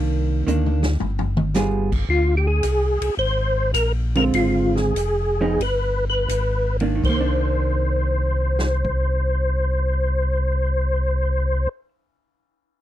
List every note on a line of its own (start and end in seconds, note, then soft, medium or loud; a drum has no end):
0.00 0.43 C2 medium
0.00 0.44 D#3 medium
0.00 0.44 A#3 medium
0.00 0.45 D4 medium
0.47 0.97 D2 medium
0.47 0.80 D#3 medium
0.47 0.81 A#3 medium
0.47 0.81 D4 medium
0.47 hi-hat pedal medium
0.47 mid tom soft
0.66 mid tom soft
0.83 snare medium
1.00 2.05 G1 medium
1.00 floor tom medium
1.19 floor tom medium
1.37 mid tom medium
1.54 1.89 G3 medium
1.54 1.89 B3 medium
1.54 1.89 F4 medium
1.54 1.89 G#4 medium
1.54 snare medium
1.54 hi-hat pedal medium
1.92 kick medium
1.92 crash medium
2.09 2.61 D2 medium
2.09 2.35 F4 medium
2.37 2.47 G4 medium
2.47 3.15 G#4 medium
2.63 2.99 C2 medium
2.63 hi-hat pedal medium
2.63 ride medium
3.01 3.10 C2 soft
3.01 ride medium
3.17 3.73 G#1 medium
3.17 3.71 C5 loud
3.74 4.31 A#1 medium
3.74 3.92 A#4 medium
3.74 hi-hat pedal medium
3.74 ride medium
4.15 4.91 D3 medium
4.15 4.92 G#3 medium
4.15 4.92 C4 medium
4.15 4.92 F4 medium
4.15 4.25 A#4 medium
4.15 ride soft
4.33 4.93 G#1 medium
4.33 4.78 F4 medium
4.33 ride medium
4.76 5.62 G#4 medium
4.76 snare soft
4.95 5.58 F1 medium
4.95 hi-hat pedal medium
4.95 ride medium
5.41 5.58 F3 medium
5.41 5.59 B3 medium
5.41 5.59 D#4 medium
5.60 6.27 G1 medium
5.60 6.05 B4 medium
5.60 ride medium
6.10 6.77 B4 medium
6.29 7.01 G#1 medium
6.29 hi-hat pedal medium
6.29 ride medium
6.80 6.94 D#3 medium
6.80 7.01 A#3 soft
6.80 7.02 D4 medium
6.80 ride soft
6.96 11.63 D#3 medium
7.03 11.67 C2 medium
7.03 11.69 C5 medium
7.03 kick medium
7.03 crash medium
7.09 11.77 A#3 medium
7.21 11.88 D4 medium
8.59 snare medium
8.85 kick medium